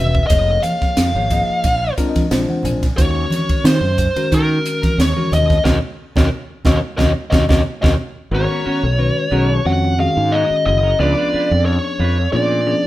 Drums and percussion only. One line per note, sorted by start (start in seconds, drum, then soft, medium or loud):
0.15 kick medium
0.30 kick medium
0.30 hi-hat pedal medium
0.30 ride medium
0.63 hi-hat pedal medium
0.63 ride medium
0.63 high conga medium
0.81 kick medium
0.81 snare soft
0.97 snare medium
0.97 hi-hat pedal medium
0.97 ride medium
1.30 kick medium
1.30 hi-hat pedal medium
1.30 ride medium
1.64 kick medium
1.64 hi-hat pedal medium
1.64 ride medium
1.98 kick medium
1.98 hi-hat pedal medium
1.98 ride medium
2.16 kick medium
2.16 snare soft
2.16 ride medium
2.16 high conga medium
2.31 snare medium
2.31 hi-hat pedal medium
2.31 ride medium
2.48 high conga medium
2.63 hi-hat pedal medium
2.63 ride medium
2.63 low conga medium
2.83 kick medium
2.83 snare soft
2.83 ride medium
2.98 kick medium
2.98 hi-hat pedal medium
2.98 ride medium
3.30 snare soft
3.30 hi-hat pedal medium
3.30 ride medium
3.30 high conga medium
3.49 kick medium
3.49 ride medium
3.65 snare loud
3.65 hi-hat pedal medium
3.65 ride medium
3.98 kick medium
3.98 hi-hat pedal medium
3.98 ride soft
3.98 low conga medium
4.16 ride medium
4.32 kick medium
4.32 hi-hat pedal medium
4.32 ride medium
4.65 hi-hat pedal medium
4.65 ride medium
4.83 kick medium
4.83 snare soft
4.83 ride medium
4.83 high conga medium
5.00 snare medium
5.00 hi-hat pedal medium
5.00 ride medium
5.16 high conga medium
5.32 hi-hat pedal medium
5.32 ride medium
5.32 low conga medium
5.50 kick medium
5.50 snare soft
5.65 kick medium
5.65 snare medium
5.65 low conga medium
6.16 kick medium
6.16 snare medium
6.16 low conga medium
6.65 kick medium
6.65 snare medium
6.65 low conga medium
6.98 kick medium
6.98 snare medium
6.98 low conga medium
7.32 kick medium
7.32 snare medium
7.32 low conga medium
7.49 kick medium
7.49 snare medium
7.49 low conga medium
7.83 kick medium
7.83 snare medium
7.83 low conga medium